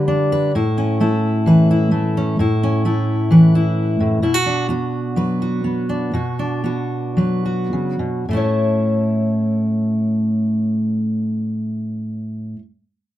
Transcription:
0, 0, Header, 1, 2, 480
1, 0, Start_track
1, 0, Key_signature, 3, "major"
1, 0, Tempo, 463679
1, 546, Time_signature, 4, 2, 24, 8
1, 4868, Tempo, 486618
1, 6788, Tempo, 544465
1, 8228, Tempo, 581395
1, 12268, End_track
2, 0, Start_track
2, 0, Title_t, "Steel-string acoustic guitar"
2, 0, Program_c, 0, 25
2, 0, Note_on_c, 0, 50, 72
2, 0, Note_on_c, 0, 55, 84
2, 0, Note_on_c, 0, 71, 61
2, 80, Note_on_c, 0, 62, 69
2, 308, Note_off_c, 0, 71, 0
2, 333, Note_on_c, 0, 71, 67
2, 523, Note_off_c, 0, 62, 0
2, 530, Note_off_c, 0, 71, 0
2, 544, Note_off_c, 0, 55, 0
2, 552, Note_off_c, 0, 50, 0
2, 570, Note_on_c, 0, 45, 65
2, 575, Note_on_c, 0, 64, 50
2, 804, Note_on_c, 0, 61, 49
2, 1039, Note_on_c, 0, 57, 53
2, 1041, Note_off_c, 0, 64, 0
2, 1045, Note_on_c, 0, 64, 50
2, 1512, Note_on_c, 0, 52, 56
2, 1526, Note_on_c, 0, 71, 52
2, 1753, Note_off_c, 0, 64, 0
2, 1767, Note_on_c, 0, 64, 49
2, 1969, Note_off_c, 0, 57, 0
2, 1982, Note_on_c, 0, 57, 54
2, 2232, Note_off_c, 0, 61, 0
2, 2249, Note_on_c, 0, 61, 50
2, 2433, Note_off_c, 0, 57, 0
2, 2438, Note_off_c, 0, 52, 0
2, 2445, Note_off_c, 0, 71, 0
2, 2447, Note_off_c, 0, 61, 0
2, 2463, Note_off_c, 0, 45, 0
2, 2474, Note_off_c, 0, 64, 0
2, 2476, Note_on_c, 0, 45, 64
2, 2487, Note_on_c, 0, 64, 54
2, 2727, Note_on_c, 0, 61, 49
2, 2945, Note_off_c, 0, 64, 0
2, 2951, Note_on_c, 0, 57, 55
2, 2957, Note_on_c, 0, 64, 51
2, 3422, Note_on_c, 0, 52, 54
2, 3433, Note_on_c, 0, 71, 55
2, 3665, Note_off_c, 0, 64, 0
2, 3677, Note_on_c, 0, 64, 52
2, 4132, Note_off_c, 0, 45, 0
2, 4145, Note_on_c, 0, 45, 52
2, 4354, Note_off_c, 0, 52, 0
2, 4359, Note_off_c, 0, 57, 0
2, 4360, Note_off_c, 0, 71, 0
2, 4365, Note_off_c, 0, 64, 0
2, 4367, Note_off_c, 0, 61, 0
2, 4369, Note_off_c, 0, 45, 0
2, 4373, Note_on_c, 0, 47, 61
2, 4381, Note_on_c, 0, 64, 53
2, 4493, Note_off_c, 0, 64, 0
2, 4493, Note_on_c, 0, 66, 43
2, 4618, Note_on_c, 0, 62, 47
2, 4851, Note_off_c, 0, 66, 0
2, 4852, Note_on_c, 0, 59, 53
2, 4864, Note_on_c, 0, 66, 50
2, 5322, Note_on_c, 0, 54, 54
2, 5331, Note_on_c, 0, 71, 50
2, 5562, Note_off_c, 0, 66, 0
2, 5574, Note_on_c, 0, 66, 48
2, 5782, Note_off_c, 0, 59, 0
2, 5793, Note_on_c, 0, 59, 52
2, 6031, Note_off_c, 0, 62, 0
2, 6043, Note_on_c, 0, 62, 44
2, 6254, Note_off_c, 0, 59, 0
2, 6255, Note_off_c, 0, 47, 0
2, 6255, Note_off_c, 0, 54, 0
2, 6258, Note_off_c, 0, 62, 0
2, 6259, Note_off_c, 0, 71, 0
2, 6263, Note_off_c, 0, 66, 0
2, 6281, Note_on_c, 0, 47, 58
2, 6291, Note_on_c, 0, 66, 46
2, 6535, Note_on_c, 0, 62, 46
2, 6777, Note_on_c, 0, 59, 49
2, 6782, Note_off_c, 0, 66, 0
2, 6793, Note_on_c, 0, 66, 45
2, 7244, Note_on_c, 0, 54, 49
2, 7256, Note_on_c, 0, 71, 44
2, 7488, Note_off_c, 0, 66, 0
2, 7498, Note_on_c, 0, 66, 42
2, 7723, Note_off_c, 0, 47, 0
2, 7739, Note_on_c, 0, 49, 46
2, 7969, Note_off_c, 0, 49, 0
2, 7972, Note_on_c, 0, 47, 43
2, 8192, Note_off_c, 0, 59, 0
2, 8195, Note_off_c, 0, 54, 0
2, 8196, Note_off_c, 0, 62, 0
2, 8201, Note_off_c, 0, 71, 0
2, 8203, Note_off_c, 0, 66, 0
2, 8226, Note_off_c, 0, 47, 0
2, 8231, Note_on_c, 0, 45, 50
2, 8249, Note_on_c, 0, 57, 44
2, 8268, Note_on_c, 0, 61, 43
2, 8280, Note_on_c, 0, 64, 39
2, 8298, Note_on_c, 0, 73, 41
2, 11742, Note_off_c, 0, 45, 0
2, 11760, Note_off_c, 0, 57, 0
2, 11779, Note_off_c, 0, 61, 0
2, 11791, Note_off_c, 0, 64, 0
2, 11809, Note_off_c, 0, 73, 0
2, 12268, End_track
0, 0, End_of_file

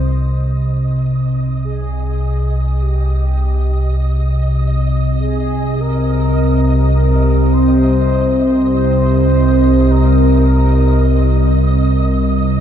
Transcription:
0, 0, Header, 1, 4, 480
1, 0, Start_track
1, 0, Key_signature, -3, "minor"
1, 0, Tempo, 1176471
1, 204, Time_signature, 4, 2, 24, 8
1, 5142, End_track
2, 0, Start_track
2, 0, Title_t, "Synth texture"
2, 0, Program_c, 0, 99
2, 0, Note_on_c, 0, 75, 80
2, 5142, Note_off_c, 0, 75, 0
2, 5142, End_track
3, 0, Start_track
3, 0, Title_t, "Soft synth lead"
3, 0, Program_c, 1, 80
3, 0, Note_on_c, 1, 72, 110
3, 180, Note_off_c, 1, 72, 0
3, 180, Note_on_c, 1, 72, 74
3, 188, Note_off_c, 1, 72, 0
3, 671, Note_on_c, 1, 68, 91
3, 1150, Note_on_c, 1, 67, 87
3, 1156, Note_off_c, 1, 68, 0
3, 1877, Note_off_c, 1, 67, 0
3, 2123, Note_on_c, 1, 68, 95
3, 2367, Note_on_c, 1, 70, 109
3, 2373, Note_off_c, 1, 68, 0
3, 2839, Note_off_c, 1, 70, 0
3, 2842, Note_on_c, 1, 70, 89
3, 3073, Note_on_c, 1, 72, 108
3, 3079, Note_off_c, 1, 70, 0
3, 3559, Note_off_c, 1, 72, 0
3, 3560, Note_on_c, 1, 72, 108
3, 4042, Note_on_c, 1, 70, 98
3, 4048, Note_off_c, 1, 72, 0
3, 5003, Note_off_c, 1, 70, 0
3, 5142, End_track
4, 0, Start_track
4, 0, Title_t, "Synth drone"
4, 0, Program_c, 2, 95
4, 0, Note_on_c, 2, 36, 68
4, 0, Note_on_c, 2, 48, 68
4, 5142, Note_off_c, 2, 36, 0
4, 5142, Note_off_c, 2, 48, 0
4, 5142, End_track
0, 0, End_of_file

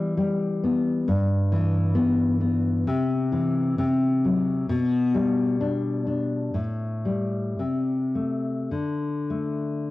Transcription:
0, 0, Header, 1, 2, 480
1, 0, Start_track
1, 0, Key_signature, 1, "major"
1, 0, Tempo, 890208
1, 588, Time_signature, 2, 2, 24, 8
1, 1546, Tempo, 921659
1, 3466, Tempo, 1043478
1, 3946, Tempo, 1123596
1, 4426, Tempo, 1188119
1, 4905, End_track
2, 0, Start_track
2, 0, Title_t, "Nylon-string guitar"
2, 0, Program_c, 0, 24
2, 0, Note_on_c, 0, 52, 88
2, 0, Note_on_c, 0, 55, 86
2, 86, Note_off_c, 0, 55, 0
2, 93, Note_on_c, 0, 55, 85
2, 344, Note_on_c, 0, 59, 74
2, 566, Note_off_c, 0, 52, 0
2, 580, Note_off_c, 0, 55, 0
2, 581, Note_on_c, 0, 43, 94
2, 585, Note_off_c, 0, 59, 0
2, 819, Note_on_c, 0, 52, 87
2, 1050, Note_on_c, 0, 59, 95
2, 1289, Note_off_c, 0, 59, 0
2, 1296, Note_on_c, 0, 59, 73
2, 1521, Note_off_c, 0, 43, 0
2, 1543, Note_off_c, 0, 59, 0
2, 1544, Note_off_c, 0, 52, 0
2, 1548, Note_on_c, 0, 48, 106
2, 1782, Note_on_c, 0, 52, 82
2, 2016, Note_off_c, 0, 48, 0
2, 2023, Note_on_c, 0, 48, 96
2, 2027, Note_off_c, 0, 52, 0
2, 2264, Note_on_c, 0, 54, 66
2, 2488, Note_off_c, 0, 48, 0
2, 2498, Note_on_c, 0, 47, 105
2, 2502, Note_off_c, 0, 54, 0
2, 2732, Note_on_c, 0, 55, 85
2, 2972, Note_on_c, 0, 62, 81
2, 3206, Note_off_c, 0, 62, 0
2, 3212, Note_on_c, 0, 62, 70
2, 3440, Note_off_c, 0, 47, 0
2, 3459, Note_on_c, 0, 45, 79
2, 3461, Note_off_c, 0, 55, 0
2, 3463, Note_off_c, 0, 62, 0
2, 3695, Note_on_c, 0, 55, 64
2, 3928, Note_off_c, 0, 45, 0
2, 3943, Note_off_c, 0, 55, 0
2, 3943, Note_on_c, 0, 48, 72
2, 4183, Note_on_c, 0, 57, 52
2, 4410, Note_off_c, 0, 48, 0
2, 4423, Note_on_c, 0, 50, 63
2, 4427, Note_off_c, 0, 57, 0
2, 4660, Note_on_c, 0, 57, 59
2, 4905, Note_off_c, 0, 50, 0
2, 4905, Note_off_c, 0, 57, 0
2, 4905, End_track
0, 0, End_of_file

